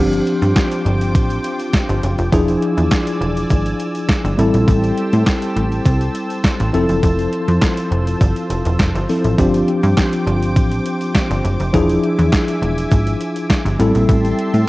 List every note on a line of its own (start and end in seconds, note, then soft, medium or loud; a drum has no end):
0.00 0.21 G1 loud
0.00 2.28 F3 medium
0.00 4.35 F3 medium
0.00 2.28 C4 medium
0.00 2.29 D4 medium
0.00 2.29 G4 medium
0.00 2.30 C5 medium
0.00 2.30 G5 medium
0.00 2.30 D6 medium
0.13 closed hi-hat soft
0.13 shaker soft
0.27 closed hi-hat medium
0.42 0.54 G2 loud
0.42 closed hi-hat soft
0.42 shaker soft
0.56 kick loud
0.56 snare loud
0.56 clap medium
0.56 closed hi-hat medium
0.56 shaker medium
0.71 closed hi-hat medium
0.71 shaker medium
0.85 1.17 G1 loud
0.85 closed hi-hat medium
1.01 closed hi-hat medium
1.01 shaker medium
1.15 1.39 A1 medium
1.15 kick loud
1.15 closed hi-hat medium
1.15 shaker medium
1.30 closed hi-hat soft
1.30 shaker soft
1.44 closed hi-hat medium
1.44 shaker medium
1.60 closed hi-hat medium
1.60 shaker medium
1.73 kick loud
1.73 snare loud
1.73 clap medium
1.73 closed hi-hat medium
1.73 shaker medium
1.89 2.01 G1 medium
1.89 closed hi-hat soft
1.89 shaker medium
2.03 2.16 F#1 medium
2.03 closed hi-hat medium
2.03 shaker medium
2.18 2.30 F1 loud
2.18 closed hi-hat soft
2.18 shaker medium
2.32 2.57 E1 loud
2.32 4.34 F3 medium
2.32 4.34 D4 medium
2.32 4.35 E4 medium
2.32 4.35 G#4 medium
2.32 4.37 D5 medium
2.32 4.37 G#5 medium
2.32 9.35 E6 medium
2.32 kick loud
2.32 closed hi-hat loud
2.32 shaker medium
2.48 closed hi-hat soft
2.48 shaker soft
2.62 closed hi-hat medium
2.77 2.89 E2 medium
2.77 closed hi-hat soft
2.77 shaker soft
2.91 kick loud
2.91 snare loud
2.91 clap medium
2.91 closed hi-hat medium
2.91 shaker medium
3.07 closed hi-hat medium
3.07 shaker soft
3.21 3.45 E1 medium
3.21 closed hi-hat medium
3.37 closed hi-hat medium
3.37 shaker medium
3.50 3.74 G#1 medium
3.50 kick loud
3.50 closed hi-hat medium
3.50 shaker medium
3.66 closed hi-hat soft
3.66 shaker soft
3.79 closed hi-hat medium
3.79 shaker medium
3.95 closed hi-hat medium
3.95 shaker medium
4.09 kick loud
4.09 snare loud
4.09 clap medium
4.09 closed hi-hat medium
4.09 shaker medium
4.24 4.36 G1 loud
4.24 closed hi-hat soft
4.24 shaker soft
4.37 4.51 A1 loud
4.37 6.69 G3 medium
4.37 6.70 C4 medium
4.37 6.70 E4 medium
4.37 6.71 G4 medium
4.37 6.70 A4 medium
4.37 11.70 C5 medium
4.37 9.35 A5 medium
4.37 closed hi-hat medium
4.37 shaker medium
4.54 4.65 A#1 medium
4.54 closed hi-hat soft
4.54 shaker medium
4.68 4.92 A1 loud
4.68 kick loud
4.68 closed hi-hat medium
4.68 shaker medium
4.84 closed hi-hat soft
4.84 shaker soft
4.97 closed hi-hat medium
5.13 5.24 A2 loud
5.13 closed hi-hat soft
5.13 shaker soft
5.26 kick loud
5.26 snare loud
5.26 clap medium
5.26 closed hi-hat medium
5.26 shaker medium
5.42 closed hi-hat medium
5.42 shaker medium
5.56 5.80 A1 medium
5.56 closed hi-hat medium
5.72 closed hi-hat soft
5.72 shaker medium
5.85 6.09 C2 loud
5.85 kick loud
5.85 closed hi-hat medium
5.85 shaker medium
6.01 closed hi-hat medium
6.01 shaker soft
6.15 closed hi-hat medium
6.15 shaker medium
6.30 closed hi-hat medium
6.30 shaker medium
6.44 kick loud
6.44 snare loud
6.44 clap medium
6.44 closed hi-hat medium
6.44 shaker medium
6.60 6.71 A1 medium
6.60 closed hi-hat soft
6.60 shaker soft
6.73 6.87 F1 medium
6.73 9.05 F3 medium
6.73 13.76 F3 medium
6.73 9.05 C4 medium
6.73 9.05 E4 medium
6.73 9.05 A4 medium
6.73 closed hi-hat medium
6.73 shaker medium
6.89 7.01 F#1 medium
6.89 closed hi-hat soft
6.89 shaker medium
7.03 7.27 F1 loud
7.03 kick loud
7.03 closed hi-hat medium
7.03 shaker medium
7.19 closed hi-hat soft
7.19 shaker soft
7.33 closed hi-hat medium
7.48 7.59 F2 loud
7.48 closed hi-hat soft
7.48 shaker soft
7.62 kick loud
7.62 snare loud
7.62 clap medium
7.62 closed hi-hat medium
7.62 shaker medium
7.77 closed hi-hat medium
7.77 shaker medium
7.91 8.15 F1 medium
7.91 closed hi-hat medium
8.07 closed hi-hat medium
8.07 shaker medium
8.21 8.34 G1 medium
8.21 kick loud
8.21 closed hi-hat medium
8.21 shaker medium
8.36 closed hi-hat soft
8.36 shaker soft
8.50 8.63 F1 medium
8.50 closed hi-hat medium
8.50 shaker medium
8.65 8.77 E1 medium
8.65 closed hi-hat medium
8.65 shaker medium
8.79 8.92 F1 medium
8.79 kick loud
8.79 snare loud
8.79 clap medium
8.79 closed hi-hat medium
8.79 shaker medium
8.95 9.06 G1 medium
8.95 closed hi-hat soft
8.95 shaker soft
9.09 9.37 F3 medium
9.09 9.37 C4 medium
9.09 9.39 E4 soft
9.09 9.39 A4 medium
9.09 open hi-hat medium
9.09 shaker soft
9.24 9.36 A1 medium
9.24 closed hi-hat soft
9.24 shaker medium
9.38 9.62 G1 loud
9.38 11.69 F3 medium
9.38 11.70 C4 medium
9.38 11.70 D4 medium
9.38 11.70 G4 medium
9.38 11.71 G5 medium
9.38 13.76 D6 medium
9.38 kick loud
9.38 closed hi-hat loud
9.38 shaker medium
9.54 closed hi-hat soft
9.54 shaker medium
9.68 closed hi-hat medium
9.83 9.95 G2 loud
9.83 closed hi-hat soft
9.83 shaker soft
9.97 kick loud
9.97 snare loud
9.97 clap medium
9.97 closed hi-hat medium
9.97 shaker medium
10.12 closed hi-hat medium
10.12 shaker medium
10.27 10.58 G1 medium
10.27 closed hi-hat medium
10.43 closed hi-hat medium
10.43 shaker medium
10.56 10.80 A1 medium
10.56 kick loud
10.56 closed hi-hat medium
10.56 shaker medium
10.71 closed hi-hat medium
10.71 shaker soft
10.86 closed hi-hat medium
10.86 shaker medium
11.01 closed hi-hat medium
11.01 shaker medium
11.15 kick loud
11.15 snare loud
11.15 clap medium
11.15 closed hi-hat medium
11.15 shaker medium
11.30 11.42 G1 loud
11.30 closed hi-hat soft
11.30 shaker medium
11.44 11.57 F#1 medium
11.44 closed hi-hat medium
11.44 shaker medium
11.60 11.71 F1 medium
11.60 closed hi-hat soft
11.60 shaker medium
11.73 11.98 E1 loud
11.73 13.75 F3 medium
11.73 13.76 D4 medium
11.73 13.76 E4 medium
11.73 13.76 G#4 medium
11.73 13.78 E5 medium
11.73 13.78 G#5 medium
11.73 kick loud
11.73 closed hi-hat medium
11.73 shaker medium
11.89 closed hi-hat soft
11.89 shaker soft
12.03 closed hi-hat medium
12.19 12.30 E2 loud
12.19 closed hi-hat soft
12.19 shaker soft
12.32 kick loud
12.32 snare loud
12.32 clap medium
12.32 closed hi-hat medium
12.32 shaker medium
12.48 closed hi-hat medium
12.48 shaker medium
12.62 12.86 E1 medium
12.62 closed hi-hat medium
12.78 closed hi-hat medium
12.78 shaker medium
12.91 13.15 G#1 medium
12.91 kick loud
12.91 closed hi-hat medium
12.91 shaker medium
13.07 closed hi-hat soft
13.07 shaker soft
13.20 closed hi-hat medium
13.20 shaker medium
13.36 closed hi-hat medium
13.36 shaker medium
13.50 kick loud
13.50 snare loud
13.50 clap medium
13.50 closed hi-hat medium
13.50 shaker medium
13.65 13.77 G1 loud
13.65 closed hi-hat soft
13.65 shaker soft
13.79 13.92 A1 loud
13.79 14.69 G3 medium
13.79 14.69 C4 medium
13.79 14.69 E4 medium
13.79 14.69 G4 medium
13.79 14.69 A4 medium
13.79 14.69 E5 medium
13.79 14.69 A5 medium
13.79 14.69 C6 medium
13.79 closed hi-hat medium
13.79 shaker medium
13.95 14.06 A#1 medium
13.95 closed hi-hat soft
13.95 shaker medium
14.09 14.33 A1 loud
14.09 kick loud
14.09 closed hi-hat medium
14.09 shaker medium
14.25 closed hi-hat soft
14.25 shaker soft
14.39 closed hi-hat medium
14.54 14.65 A2 loud
14.54 closed hi-hat soft
14.54 shaker soft